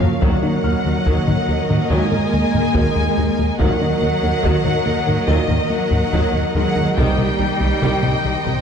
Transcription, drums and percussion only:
0.01 taiko low
0.22 taiko
1.06 taiko
1.27 taiko low-mid
1.70 taiko low-mid
2.12 taiko low-mid
2.54 taiko low-mid
2.75 taiko
3.60 taiko
4.44 taiko
4.65 taiko low-mid
5.08 taiko low-mid
5.50 taiko low-mid
5.92 taiko low-mid
6.13 taiko
6.98 taiko
7.82 taiko
8.04 taiko low-mid
8.46 taiko low-mid

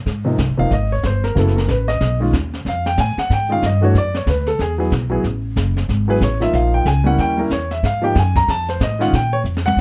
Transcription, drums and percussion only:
0.06 brush sweep, kick, snare
0.38 kick, snare, hi-hat pedal
0.71 brush sweep, kick, snare
1.03 kick, snare, hi-hat pedal
1.24 snare
1.36 brush sweep, kick, snare
1.47 snare
1.58 snare
1.68 kick, snare, hi-hat pedal
1.88 snare
2.01 brush sweep, kick, snare
2.33 kick, snare, hi-hat pedal
2.54 snare
2.66 brush sweep, kick, snare
2.86 snare
2.97 kick, snare, hi-hat pedal
3.18 snare
3.30 brush sweep, kick, snare
3.62 kick, snare, hi-hat pedal
3.95 brush sweep, kick, snare
4.14 snare
4.27 kick, snare, hi-hat pedal
4.47 snare
4.59 brush sweep, kick, snare
4.91 kick, snare, hi-hat pedal
5.24 brush sweep, kick, snare
5.56 kick, snare, hi-hat pedal
5.77 snare
5.89 brush sweep, kick, snare
6.21 kick, snare, hi-hat pedal
6.41 snare
6.53 brush sweep, kick, snare
6.85 kick, snare, hi-hat pedal
7.18 brush sweep, kick, snare
7.50 kick, snare, hi-hat pedal
7.71 snare
7.83 brush sweep, kick, snare
8.15 kick, snare, hi-hat pedal
8.36 kick, snare
8.48 brush sweep, kick, snare
8.69 snare
8.80 kick, snare, hi-hat pedal
9.01 snare
9.13 brush sweep, kick, snare
9.45 hi-hat pedal
9.57 snare
9.67 high tom

